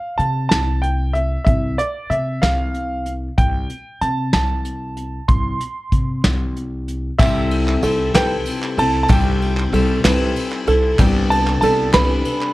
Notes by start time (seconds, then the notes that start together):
Already playing: F5
0.18 C3 A5, closed hi-hat
0.49 C2 A5, snare, closed hi-hat
0.82 G5, closed hi-hat
1.14 E5, closed hi-hat
1.45 C2 E5, kick, closed hi-hat
1.78 D5, closed hi-hat
2.10 C3 E5, closed hi-hat
2.42 C2 F5, snare, closed hi-hat
2.74 closed hi-hat
3.06 closed hi-hat
3.38 C2 G5, kick, closed hi-hat
3.70 closed hi-hat
4.01 C3 A5, closed hi-hat
4.33 C2 A5, snare, closed hi-hat
4.65 closed hi-hat
4.97 closed hi-hat
5.28 C2 C6, kick, closed hi-hat
5.61 closed hi-hat
5.92 C3, kick, closed hi-hat
6.24 C2, snare, closed hi-hat
6.56 closed hi-hat
6.88 closed hi-hat
7.19 C2 C3 G3 C4 E4 G4 A4 E5, kick, clap, crash, tambourine
7.51 ride
7.68 clap
7.82 C2 G3 C4 E4 A4, ride, tambourine
8.14 C2 C3 G3 C4 E4 A4 B4 G5, snare, clap, ride
8.45 ride, tambourine
8.62 clap
8.78 C2 C4 E4 A4 A5, ride
8.94 clap
9.03 A5
9.08 C2 C3 G3 C4 E4 G4 A4 G5, kick, clap, ride, tambourine
9.42 ride
9.57 clap
9.72 C2 G3 C4 E4 A4, ride
10.04 C2 C3 G3 C4 E4 A4 B4, snare, clap, ride
10.36 ride, tambourine
10.52 clap
10.67 C2 C4 E4 A4, ride
10.84 clap
10.98 C2 C3 G3 B3 D4 G4 A4, kick, clap, ride, tambourine
11.30 A5, ride
11.47 clap
11.61 C2 G3 B3 D4 A4 A5, ride, tambourine
11.93 C2 C3 G3 B3 D4 A4 B4 B5, snare, clap, ride
12.25 ride, tambourine
12.41 clap